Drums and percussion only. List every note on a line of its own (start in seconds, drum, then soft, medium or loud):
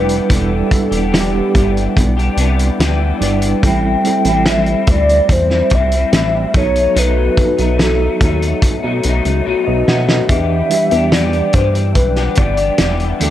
0.09 closed hi-hat soft
0.30 kick medium
0.30 closed hi-hat medium
0.71 kick medium
0.71 closed hi-hat medium
0.92 closed hi-hat soft
1.14 snare loud
1.14 closed hi-hat medium
1.55 kick medium
1.55 closed hi-hat medium
1.77 closed hi-hat soft
1.97 kick medium
1.97 closed hi-hat medium
2.19 closed hi-hat soft
2.37 closed hi-hat medium
2.59 closed hi-hat soft
2.80 snare medium
2.80 closed hi-hat medium
3.21 closed hi-hat medium
3.42 closed hi-hat medium
3.63 kick medium
3.63 closed hi-hat medium
4.05 closed hi-hat medium
4.25 closed hi-hat soft
4.46 snare loud
4.46 closed hi-hat medium
4.66 closed hi-hat soft
4.87 kick medium
4.87 closed hi-hat medium
5.09 closed hi-hat soft
5.29 kick medium
5.29 closed hi-hat medium
5.50 snare soft
5.70 kick medium
5.70 closed hi-hat medium
5.92 closed hi-hat soft
6.13 snare medium
6.13 closed hi-hat medium
6.54 kick medium
6.54 closed hi-hat medium
6.76 closed hi-hat soft
6.96 closed hi-hat medium
7.37 kick medium
7.37 closed hi-hat medium
7.58 closed hi-hat soft
7.79 snare loud
7.79 closed hi-hat medium
8.21 kick medium
8.21 closed hi-hat medium
8.42 closed hi-hat soft
8.62 kick medium
8.62 closed hi-hat medium
9.03 closed hi-hat medium
9.25 closed hi-hat soft
9.88 snare medium
10.09 snare medium
10.29 kick medium
10.29 closed hi-hat medium
10.71 closed hi-hat medium
10.91 closed hi-hat soft
11.12 snare loud
11.12 closed hi-hat medium
11.33 closed hi-hat soft
11.53 kick medium
11.53 closed hi-hat medium
11.75 closed hi-hat soft
11.95 kick medium
11.95 closed hi-hat medium
12.16 snare soft
12.16 closed hi-hat soft
12.35 kick medium
12.35 closed hi-hat medium
12.57 closed hi-hat soft
12.78 snare medium
12.78 closed hi-hat medium
13.00 closed hi-hat soft
13.20 closed hi-hat medium